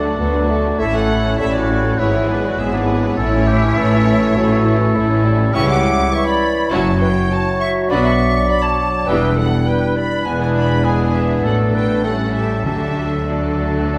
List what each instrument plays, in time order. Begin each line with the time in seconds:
Already playing: double bass section D2, cello section D2, bassoon A3, french horn section A3 D4, clarinet D4, flute A4, oboe D5, violin section F#5
0.03 viola section D3 F#3, violin section D4 F#4
0.18 double bass section D2, cello section D2, viola section F#3 A3, bassoon B3, violin section F#4 A4
0.33 viola section D3 F#3, violin section D4 F#4
0.48 viola section F#3 A3, bassoon A3, violin section F#4 A4
0.63 viola section D3 F#3, violin section D4 F#4
0.78 double bass section A1, cello section A2, viola section A3, bassoon A3, french horn section C#4, clarinet E4, violin section E4 E5, flute A4, oboe C#5
0.93 viola section E3 C#4, violin section C#4 A4 F#5, flute A4
1.08 viola section A3, violin section E4
1.24 viola section E3 C#4, violin section C#4 A4
1.38 double bass section A1, cello section A2, bassoon G3, viola section A3, violin section E4 E5, flute A4, oboe C#5
1.53 viola section E3 C#4, violin section C#4 A4 D5, flute F#4
1.68 viola section A3, violin section E4
1.83 viola section E3 C#4, violin section C#4 A4
1.97 double bass section G#1, cello section G#2, bassoon F#3, viola section G#3 B3, french horn section G#3 E4, violin section E4 G#4 C#5, flute E4, clarinet E4, oboe B4
2.14 viola section E3 G#3, violin section E4 G#4
2.27 viola section G#3 B3, flute D4, violin section E4 G#4 B4
2.43 viola section E3 G#3, violin section E4 G#4 D5, flute F#4
2.57 double bass section G#1, cello section G#2, viola section G#3 B3, clarinet B3, violin section E4 G#4 E5, flute G#4
2.73 viola section E3 G#3, flute D4, violin section E4 G#4 B4
2.89 viola section G#3 B3, violin section E4 G#4
3.03 viola section E3 G#3, violin section E4 G#4
3.16 double bass section A1, cello section A2, viola section A3 E4, french horn section A3, violin section C#4 E4 C#5, clarinet C#4, flute E4, oboe A4
3.33 viola section E3 C#4, violin section C#4 E4
3.47 viola section A3 E4, violin section C#4 E4, oboe G4
3.62 viola section E3 C#4, violin section C#4 E4
3.75 double bass section A1, cello section A2, bassoon E3, viola section A3 E4, violin section C#4 E4, oboe A4
3.91 viola section E3 C#4, violin section C#4 E4
4.05 viola section A3 E4, violin section C#4 E4
4.20 viola section E3 C#4, violin section C#4 E4
4.35 double bass section A1, cello section A2, bassoon F#3, viola section A3 E4, violin section C#4 E4, clarinet F#4, oboe A4
4.49 viola section E3 C#4, violin section C#4 E4
4.62 bassoon E3, viola section A3 E4, violin section C#4 E4
4.78 viola section E3 C#4, violin section C#4 E4
4.92 double bass section A1, cello section A2, viola section A3 E4, bassoon A3, violin section C#4 E4, clarinet E4
5.09 viola section E3 C#4, violin section C#4 E4
5.23 bassoon G3, viola section A3 E4, violin section C#4 E4
5.37 viola section E3 C#4, violin section C#4 E4
5.53 double bass section C#2, cello section C#3, viola section E3 C#4, bassoon F#3, french horn section G3, violin section E4 G4 C#6, clarinet E4, flute E5, oboe E5
5.69 flute F#5, violin section D6
6.12 bassoon E3, oboe C#5, flute E5, violin section C#6
6.27 flute D5, violin section B5
6.70 double bass section F#1, cello section F#2, viola section F#3 C#4, french horn section F#3 E4, bassoon F#3, violin section E4 F#4 A5, clarinet F#4, oboe C#5, flute C#5
7.00 flute B4, violin section G5
7.30 clarinet F#4, flute C#5, violin section A5
7.59 flute E5, violin section C#6
7.89 double bass section B1, cello section B2, viola section F#3 B3, french horn section D4, violin section D4 F#4 B5, flute D5, oboe D5
8.03 flute E5, violin section C#6
8.48 bassoon F#3, flute D5, violin section B5
8.62 flute C#5, violin section A5
9.06 double bass section E1, cello section E2, viola section E3 B3, french horn section G3, bassoon G3, violin section D4 G4 G5, clarinet E4, flute B4, oboe E5
9.37 flute A4, violin section F#5
9.66 flute B4, oboe B4, violin section G5
9.96 flute D5, violin section B5
10.26 double bass section E1, cello section E2, viola section E3 B3, french horn section G#3, bassoon B3, violin section D4 G#4 G#5, clarinet E4, flute B4, oboe B4
10.39 flute B4, violin section G#5
10.54 flute D5, violin section B5
10.84 viola section E3 B3, bassoon B3, violin section D4 G#4 G#5, oboe G#4, flute B4
11.14 flute G#4, violin section E5
11.43 double bass section A1, cello section A2, viola section F#3 A3, french horn section A3, violin section D4 A4 F#5, clarinet D4, oboe A4, flute A4
11.74 flute B4, violin section G5
12.04 viola section G3 A3, french horn section G3 C#4, bassoon A3, violin section C#4 A4 F#5, clarinet C#4, oboe A4, flute A4
12.35 flute G4, violin section E5
12.65 double bass section D2, timpani D3, cello section D3, viola section F#3 A3, french horn section F#3 D4, bassoon A3, violin section D4 A4 E5, clarinet D4, flute G4, oboe A4
13.28 viola section F#3 A3, violin section D4 A4 D5, flute F#4